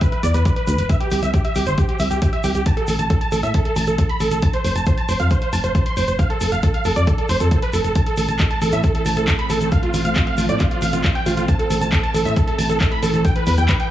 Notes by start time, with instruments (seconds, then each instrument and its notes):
0.01 supersaw synth B4, kick, closed hi-hat, shaker
0.12 supersaw synth B4, closed hi-hat
0.23 fm bass E2, supersaw synth D5, closed hi-hat, shaker
0.34 fm bass E2, supersaw synth B4, closed hi-hat, shaker
0.45 supersaw synth B4, kick, closed hi-hat, shaker
0.56 supersaw synth B4, closed hi-hat
0.67 fm bass D2, supersaw synth B4, closed hi-hat, shaker
0.78 fm bass E1, supersaw synth B4, closed hi-hat, shaker
0.89 supersaw synth E5, kick, closed hi-hat, shaker
1.00 supersaw synth G4, closed hi-hat
1.11 fm bass C2, supersaw synth G4, open hi-hat, shaker
1.22 fm bass C2, supersaw synth E5, closed hi-hat, shaker
1.33 supersaw synth G4, kick, closed hi-hat, shaker
1.45 supersaw synth E5, closed hi-hat
1.55 fm bass C2, supersaw synth G4, open hi-hat, shaker
1.66 fm bass G1, supersaw synth C5, closed hi-hat, shaker
1.78 supersaw synth G4, kick, closed hi-hat, shaker
1.88 supersaw synth G4, closed hi-hat
2.00 fm bass C2, supersaw synth E5, open hi-hat, shaker
2.10 fm bass C2, supersaw synth G4, closed hi-hat, shaker
2.22 supersaw synth G4, kick, closed hi-hat, shaker
2.33 supersaw synth E5, closed hi-hat
2.44 fm bass C2, supersaw synth G4, open hi-hat, shaker
2.55 fm bass C2, supersaw synth G4, closed hi-hat, shaker
2.66 supersaw synth A5, kick, closed hi-hat, shaker
2.77 supersaw synth A4, closed hi-hat
2.87 fm bass A1, supersaw synth A4, open hi-hat, shaker
2.99 fm bass A1, supersaw synth A5, closed hi-hat, shaker
3.10 supersaw synth A4, kick, closed hi-hat, shaker
3.21 supersaw synth A5, closed hi-hat
3.32 fm bass A1, supersaw synth A4, open hi-hat, shaker
3.43 fm bass A2, supersaw synth E5, closed hi-hat, shaker
3.54 supersaw synth A4, kick, closed hi-hat, shaker
3.65 supersaw synth A4, closed hi-hat
3.76 fm bass A1, supersaw synth A5, open hi-hat, shaker
3.87 fm bass A1, supersaw synth A4, closed hi-hat, shaker
3.98 supersaw synth A4, kick, closed hi-hat, shaker
4.09 supersaw synth B5, closed hi-hat
4.20 fm bass A1, supersaw synth A4, open hi-hat, shaker
4.31 fm bass A1, supersaw synth A4, closed hi-hat, shaker
4.42 supersaw synth A5, kick, closed hi-hat, shaker
4.53 supersaw synth C5, closed hi-hat
4.64 fm bass F1, supersaw synth C5, open hi-hat, shaker
4.76 fm bass F1, supersaw synth A5, closed hi-hat, shaker
4.86 supersaw synth C5, kick, closed hi-hat, shaker
4.98 supersaw synth A5, closed hi-hat
5.09 fm bass F1, supersaw synth C5, open hi-hat, shaker
5.20 fm bass F2, supersaw synth F5, closed hi-hat, shaker
5.30 supersaw synth C5, kick, closed hi-hat, shaker
5.42 supersaw synth C5, closed hi-hat
5.53 fm bass F1, supersaw synth A5, open hi-hat, shaker
5.63 fm bass F1, supersaw synth C5, closed hi-hat, shaker
5.75 supersaw synth C5, kick, closed hi-hat, shaker
5.86 supersaw synth C6, closed hi-hat
5.97 fm bass F1, supersaw synth C5, open hi-hat, shaker
6.08 fm bass F1, supersaw synth C5, closed hi-hat, shaker
6.19 supersaw synth F5, kick, closed hi-hat, shaker
6.30 supersaw synth A4, closed hi-hat
6.41 fm bass F1, supersaw synth A4, open hi-hat, shaker
6.52 fm bass F1, supersaw synth F5, closed hi-hat, shaker
6.63 supersaw synth A4, kick, closed hi-hat, shaker
6.74 supersaw synth F5, closed hi-hat
6.85 fm bass F1, supersaw synth A4, open hi-hat, shaker
6.96 fm bass F2, supersaw synth D5, closed hi-hat, shaker
7.07 supersaw synth A4, kick, closed hi-hat, shaker
7.18 supersaw synth A4, closed hi-hat
7.29 fm bass F1, supersaw synth C5, open hi-hat, shaker
7.40 fm bass F2, supersaw synth A4, closed hi-hat, shaker
7.51 supersaw synth A4, kick, closed hi-hat, shaker
7.62 supersaw synth B4, closed hi-hat
7.73 fm bass F1, supersaw synth A4, open hi-hat, shaker
7.84 fm bass F1, supersaw synth A4, closed hi-hat, shaker
7.95 analog synth pad E3 A3 C4, supersaw synth A5, kick, closed hi-hat, shaker
8.06 supersaw synth A4, closed hi-hat
8.17 fm bass A1, supersaw synth A4, open hi-hat, shaker
8.28 fm bass A1, supersaw synth A5, closed hi-hat, shaker
8.39 supersaw synth A4, kick, clap, closed hi-hat, shaker
8.51 supersaw synth A5, closed hi-hat
8.62 fm bass A1, supersaw synth A4, open hi-hat, shaker
8.72 fm bass A2, supersaw synth E5, closed hi-hat, shaker
8.83 supersaw synth A4, kick, closed hi-hat, shaker
8.95 supersaw synth A4, closed hi-hat
9.06 fm bass A1, supersaw synth A5, open hi-hat, shaker
9.17 fm bass A1, supersaw synth A4, closed hi-hat, shaker
9.28 supersaw synth A4, kick, clap, closed hi-hat, shaker
9.39 supersaw synth B5, closed hi-hat
9.50 fm bass A1, supersaw synth A4, open hi-hat, shaker
9.61 fm bass A1, supersaw synth A4, closed hi-hat, shaker
9.72 analog synth pad F3, supersaw synth F5, kick, closed hi-hat, shaker
9.83 supersaw synth F4, closed hi-hat
9.94 fm bass A1, supersaw synth F4, open hi-hat, shaker
10.05 fm bass A1, supersaw synth F5, closed hi-hat, shaker
10.16 supersaw synth F4, kick, clap, closed hi-hat, shaker
10.27 supersaw synth F5, closed hi-hat
10.37 fm bass A1, supersaw synth F4, open hi-hat, shaker
10.49 fm bass A2, supersaw synth D5, closed hi-hat, shaker
10.59 supersaw synth F4, kick, clap, closed hi-hat, shaker
10.71 supersaw synth F4, closed hi-hat
10.82 fm bass A1, supersaw synth F5, open hi-hat, shaker
10.93 fm bass A1, supersaw synth F4, closed hi-hat, shaker
11.04 supersaw synth F4, kick, clap, closed hi-hat, shaker
11.15 supersaw synth G5, closed hi-hat
11.26 fm bass A1, supersaw synth F4, open hi-hat, shaker
11.37 fm bass A1, supersaw synth F4, closed hi-hat, shaker
11.48 analog synth pad E3, supersaw synth A5, kick, closed hi-hat, shaker
11.59 supersaw synth A4, closed hi-hat
11.70 fm bass A1, supersaw synth A4, open hi-hat, shaker
11.81 fm bass A1, supersaw synth A5, closed hi-hat, shaker
11.92 supersaw synth A4, kick, clap, closed hi-hat, shaker
12.03 supersaw synth A5, closed hi-hat
12.14 fm bass A1, supersaw synth A4, open hi-hat, shaker
12.25 fm bass A2, supersaw synth E5, closed hi-hat, shaker
12.36 supersaw synth A4, kick, closed hi-hat, shaker
12.47 supersaw synth A4, closed hi-hat
12.58 fm bass A1, supersaw synth A5, open hi-hat, shaker
12.69 fm bass A1, supersaw synth A4, closed hi-hat, shaker
12.81 supersaw synth A4, kick, clap, closed hi-hat, shaker
12.92 supersaw synth B5, closed hi-hat
13.03 fm bass A1, supersaw synth A4, open hi-hat, shaker
13.14 fm bass A1, supersaw synth A4, closed hi-hat, shaker
13.25 analog synth pad E4 G4 B4, supersaw synth G5, kick, closed hi-hat, shaker
13.36 supersaw synth B4, closed hi-hat
13.47 fm bass E2, supersaw synth B4, open hi-hat, shaker
13.57 fm bass E2, supersaw synth G5, closed hi-hat, shaker
13.69 supersaw synth B4, kick, clap, closed hi-hat, shaker
13.80 supersaw synth G5, closed hi-hat